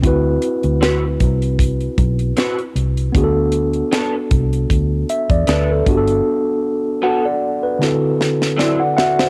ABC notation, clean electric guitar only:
X:1
M:4/4
L:1/16
Q:"Swing 16ths" 1/4=77
K:Dmix
V:1 name="Clean electric guitar"
z4 [CFB] z6 z [CFB] z3 | z4 [B,DA] z6 z [B,DA] z3 | z4 [B,FA] z6 z [F,CE] z3 |]